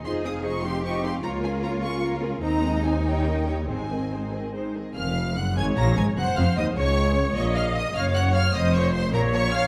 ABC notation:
X:1
M:6/8
L:1/16
Q:3/8=101
K:Ab
V:1 name="Violin section"
c'2 e'2 d'2 c'2 d'2 c'2 | b2 a2 b2 d'2 z4 | b4 a2 g4 g2 | a6 z6 |
[K:Db] f'4 g'2 a'2 b'2 a'2 | g'2 f'2 e'2 d'6 | d'2 f'2 e'2 f'2 g'2 f'2 | e'2 d'2 c'2 b2 d'2 f'2 |]
V:2 name="Violin section"
[ce]2 [Af]2 [ce]2 [Af]2 [ce]2 [Af]2 | [Bd]2 [AB]2 [Bd]2 [AB]2 [Bd]2 [AB]2 | c2 [Ae]2 c2 [Gd]2 [Be]2 [Gd]2 | c2 [Ae]2 c2 [Ae]2 c2 [Ae]2 |
[K:Db] f4 g2 a2 b2 a2 | g2 f2 e2 d6 | d2 f2 e2 f2 g2 f2 | e2 d2 c2 B2 d2 f2 |]
V:3 name="Viola section"
[EF]2 [CE]2 [EF]2 [CE]2 [EF]2 [CE]2 | [B,F]2 [DB]2 [B,F]2 [DB]2 [B,F]2 [DB]2 | [CE]2 [A,C]2 [CE]2 [G,E]2 [E,D]2 [G,E]2 | [A,E]2 [E,C]2 [A,E]2 [E,C]2 [A,E]2 [E,C]2 |
[K:Db] z6 d6 | c6 d6 | e6 d6 | c6 d6 |]
V:4 name="Cello section" clef=bass
A6 G6 | F12 | E12 | C8- C z3 |
[K:Db] F,,4 G,,2 A,,2 B,,2 A,,2 | G,,2 F,,2 E,,2 D,,6 | B,,6 G,,6 | F,,6 B,,6 |]
V:5 name="Double bass section" clef=bass
F,,,12 | D,,12 | E,,12 | A,,,8- A,,,2 z2 |
[K:Db] F,,,4 G,,,2 A,,,2 B,,,2 A,,,2 | G,,,2 F,,,2 E,,2 D,,6 | B,,,6 G,,,6 | F,,,6 B,,,6 |]